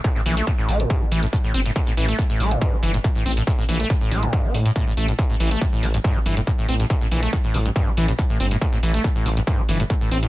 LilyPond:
<<
  \new Staff \with { instrumentName = "Acid bass" } { \clef bass \time 4/4 \key a \phrygian \tempo 4 = 140 a,16 a,16 e16 a16 a,16 a,16 a16 a,16 g,16 c'16 e16 a,16 a,16 a,16 c'16 a,16 | a,16 a,16 e16 a16 a,16 a,16 a16 a,16 g,16 c'16 e16 a,16 a,16 a,16 c'16 a,16 | a,16 a,16 e16 a16 a,16 a,16 a16 a,16 g,16 c'16 a,16 a,16 a,16 a,16 a16 a,16 | a,16 a,16 e16 a16 a,16 a,16 a16 g,16 g,16 c'16 e16 a,16 a,16 a,16 c'16 a,16 |
a,16 a,16 e16 a16 a,16 a,16 a16 g,16 g,16 c'16 e16 a,16 a,16 a,16 c'16 a,16 | a,16 a,16 e16 a16 a,16 a,16 a16 g,16 g,16 c'16 e16 a,16 a,16 a,16 c'16 a,16 | }
  \new Staff \with { instrumentName = "Detuned saw bass" } { \clef bass \time 4/4 \key a \phrygian r8 bes,,8 r8 a,,8 r8 a,,8 r8 g,,8 | r8 a,,8 r8 a,,8 r8 g,,8 r8 a,,8 | r8 bes,,8 r8 a,,8 r8 a,8 r8 a,,8 | r8 a,,8 r8 a,,8 r8 g,,8 r8 a,,8 |
r8 bes,,8 r8 a,,8 r8 a,,8 r8 g,,8 | r8 a,,8 r8 a,,8 r8 g,,8 r8 a,,8 | }
  \new DrumStaff \with { instrumentName = "Drums" } \drummode { \time 4/4 <hh bd>8 hho16 hh16 <hh bd>8 hho16 hh16 <hh bd>8 hho16 hh16 <hh bd>8 hho16 hh16 | <hh bd>8 hho16 hh16 <hh bd>8 hho16 hh16 <hh bd>8 hho16 hh16 <hh bd>8 hho16 hh16 | <hh bd>8 hho16 hh16 <hh bd>8 hho16 hh16 <hh bd>8 hho16 hh16 <hh bd>8 hho16 hh16 | <hh bd>8 hho16 hh16 <hh bd>8 hho16 hh16 <hh bd>8 hho16 hh16 <hh bd>8 hho16 hh16 |
<hh bd>8 hho16 hh16 <hh bd>8 hho16 hh16 <hh bd>8 hho16 hh16 <hh bd>8 hho16 hh16 | <hh bd>8 hho16 hh16 <hh bd>8 hho16 hh16 <hh bd>8 hho16 hh16 <hh bd>8 hho16 hh16 | }
>>